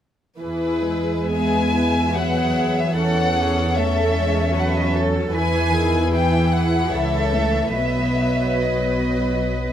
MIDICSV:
0, 0, Header, 1, 6, 480
1, 0, Start_track
1, 0, Key_signature, 4, "major"
1, 0, Tempo, 867052
1, 225, Time_signature, 3, 2, 24, 8
1, 1189, Tempo, 811908
1, 2149, Tempo, 791557
1, 4069, Tempo, 839161
1, 5664, End_track
2, 0, Start_track
2, 0, Title_t, "Violin section"
2, 0, Program_c, 0, 48
2, 223, Note_on_c, 0, 71, 53
2, 694, Note_off_c, 0, 71, 0
2, 719, Note_on_c, 0, 80, 63
2, 1190, Note_off_c, 0, 80, 0
2, 1193, Note_on_c, 0, 78, 60
2, 1556, Note_off_c, 0, 78, 0
2, 1564, Note_on_c, 0, 76, 54
2, 1679, Note_off_c, 0, 76, 0
2, 1680, Note_on_c, 0, 78, 69
2, 2143, Note_off_c, 0, 78, 0
2, 2144, Note_on_c, 0, 76, 63
2, 2653, Note_off_c, 0, 76, 0
2, 2660, Note_on_c, 0, 78, 50
2, 2707, Note_on_c, 0, 76, 46
2, 2710, Note_off_c, 0, 78, 0
2, 2760, Note_off_c, 0, 76, 0
2, 2760, Note_on_c, 0, 75, 50
2, 2812, Note_off_c, 0, 75, 0
2, 2814, Note_on_c, 0, 76, 50
2, 2865, Note_off_c, 0, 76, 0
2, 3101, Note_on_c, 0, 80, 71
2, 3557, Note_off_c, 0, 80, 0
2, 3582, Note_on_c, 0, 79, 62
2, 3820, Note_off_c, 0, 79, 0
2, 3822, Note_on_c, 0, 78, 61
2, 4063, Note_on_c, 0, 76, 61
2, 4068, Note_off_c, 0, 78, 0
2, 4525, Note_off_c, 0, 76, 0
2, 4532, Note_on_c, 0, 76, 61
2, 5007, Note_off_c, 0, 76, 0
2, 5026, Note_on_c, 0, 75, 45
2, 5664, Note_off_c, 0, 75, 0
2, 5664, End_track
3, 0, Start_track
3, 0, Title_t, "Violin section"
3, 0, Program_c, 1, 48
3, 229, Note_on_c, 1, 68, 36
3, 230, Note_on_c, 1, 71, 36
3, 697, Note_off_c, 1, 68, 0
3, 697, Note_off_c, 1, 71, 0
3, 723, Note_on_c, 1, 71, 38
3, 723, Note_on_c, 1, 76, 41
3, 1178, Note_off_c, 1, 71, 0
3, 1185, Note_on_c, 1, 71, 38
3, 1657, Note_off_c, 1, 76, 0
3, 1661, Note_off_c, 1, 71, 0
3, 1669, Note_on_c, 1, 69, 42
3, 1670, Note_on_c, 1, 73, 43
3, 2137, Note_off_c, 1, 73, 0
3, 2138, Note_off_c, 1, 69, 0
3, 2144, Note_on_c, 1, 73, 44
3, 2147, Note_on_c, 1, 69, 44
3, 2616, Note_off_c, 1, 69, 0
3, 2616, Note_off_c, 1, 73, 0
3, 2624, Note_on_c, 1, 69, 44
3, 3096, Note_off_c, 1, 69, 0
3, 3098, Note_on_c, 1, 71, 48
3, 3101, Note_on_c, 1, 68, 47
3, 3572, Note_off_c, 1, 68, 0
3, 3579, Note_on_c, 1, 68, 44
3, 4049, Note_off_c, 1, 71, 0
3, 4058, Note_off_c, 1, 68, 0
3, 4068, Note_on_c, 1, 69, 42
3, 4068, Note_on_c, 1, 73, 39
3, 4540, Note_off_c, 1, 69, 0
3, 4540, Note_off_c, 1, 73, 0
3, 4540, Note_on_c, 1, 71, 43
3, 4540, Note_on_c, 1, 75, 40
3, 5664, Note_off_c, 1, 71, 0
3, 5664, Note_off_c, 1, 75, 0
3, 5664, End_track
4, 0, Start_track
4, 0, Title_t, "Cello section"
4, 0, Program_c, 2, 48
4, 714, Note_on_c, 2, 68, 39
4, 938, Note_off_c, 2, 68, 0
4, 959, Note_on_c, 2, 64, 39
4, 1190, Note_on_c, 2, 68, 46
4, 1191, Note_off_c, 2, 64, 0
4, 1671, Note_on_c, 2, 69, 49
4, 1674, Note_off_c, 2, 68, 0
4, 1911, Note_off_c, 2, 69, 0
4, 1912, Note_on_c, 2, 68, 43
4, 2145, Note_off_c, 2, 68, 0
4, 2148, Note_on_c, 2, 69, 48
4, 2628, Note_off_c, 2, 69, 0
4, 2629, Note_on_c, 2, 71, 55
4, 2860, Note_off_c, 2, 71, 0
4, 2865, Note_on_c, 2, 69, 50
4, 3099, Note_off_c, 2, 69, 0
4, 3099, Note_on_c, 2, 71, 51
4, 3336, Note_on_c, 2, 68, 44
4, 3338, Note_off_c, 2, 71, 0
4, 3579, Note_on_c, 2, 64, 44
4, 3580, Note_off_c, 2, 68, 0
4, 4067, Note_on_c, 2, 69, 50
4, 4068, Note_off_c, 2, 64, 0
4, 4537, Note_on_c, 2, 71, 41
4, 4539, Note_off_c, 2, 69, 0
4, 5664, Note_off_c, 2, 71, 0
4, 5664, End_track
5, 0, Start_track
5, 0, Title_t, "Viola section"
5, 0, Program_c, 3, 48
5, 225, Note_on_c, 3, 52, 41
5, 226, Note_on_c, 3, 64, 38
5, 452, Note_off_c, 3, 52, 0
5, 471, Note_on_c, 3, 56, 40
5, 695, Note_off_c, 3, 64, 0
5, 719, Note_on_c, 3, 59, 39
5, 1185, Note_off_c, 3, 59, 0
5, 1190, Note_on_c, 3, 54, 38
5, 1191, Note_off_c, 3, 56, 0
5, 1192, Note_on_c, 3, 59, 39
5, 1665, Note_off_c, 3, 59, 0
5, 1672, Note_on_c, 3, 52, 41
5, 1673, Note_on_c, 3, 61, 45
5, 1674, Note_off_c, 3, 54, 0
5, 1903, Note_off_c, 3, 61, 0
5, 1910, Note_on_c, 3, 61, 45
5, 2139, Note_off_c, 3, 52, 0
5, 2144, Note_off_c, 3, 61, 0
5, 2151, Note_on_c, 3, 61, 46
5, 2152, Note_on_c, 3, 57, 48
5, 2384, Note_on_c, 3, 56, 49
5, 2392, Note_off_c, 3, 57, 0
5, 2621, Note_off_c, 3, 56, 0
5, 2623, Note_on_c, 3, 54, 43
5, 3081, Note_off_c, 3, 61, 0
5, 3096, Note_off_c, 3, 54, 0
5, 3096, Note_on_c, 3, 52, 46
5, 3100, Note_on_c, 3, 64, 48
5, 3332, Note_on_c, 3, 51, 46
5, 3336, Note_off_c, 3, 52, 0
5, 3575, Note_on_c, 3, 52, 46
5, 3578, Note_off_c, 3, 51, 0
5, 4050, Note_off_c, 3, 64, 0
5, 4056, Note_off_c, 3, 52, 0
5, 4066, Note_on_c, 3, 52, 40
5, 4067, Note_on_c, 3, 64, 41
5, 4297, Note_off_c, 3, 64, 0
5, 4303, Note_on_c, 3, 57, 37
5, 4530, Note_off_c, 3, 52, 0
5, 4539, Note_on_c, 3, 54, 40
5, 4541, Note_off_c, 3, 57, 0
5, 4541, Note_on_c, 3, 59, 40
5, 5664, Note_off_c, 3, 54, 0
5, 5664, Note_off_c, 3, 59, 0
5, 5664, End_track
6, 0, Start_track
6, 0, Title_t, "Double bass section"
6, 0, Program_c, 4, 48
6, 228, Note_on_c, 4, 40, 40
6, 3076, Note_off_c, 4, 40, 0
6, 3098, Note_on_c, 4, 40, 50
6, 4049, Note_off_c, 4, 40, 0
6, 4070, Note_on_c, 4, 37, 42
6, 4538, Note_on_c, 4, 35, 42
6, 4541, Note_off_c, 4, 37, 0
6, 5664, Note_off_c, 4, 35, 0
6, 5664, End_track
0, 0, End_of_file